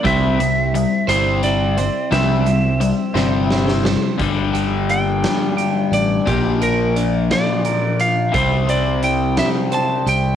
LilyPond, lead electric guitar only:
\new Staff \with { instrumentName = "Lead electric guitar" } { \time 6/8 \key c \mixolydian \tempo 4. = 58 e''4. c''8 d''4 | e''2~ e''8 r8 | r4 g''4. d''8 | g'8 bes'8 r8 d''4 f''8 |
c''8 d''8 g''8 e''8 a''8 g''8 | }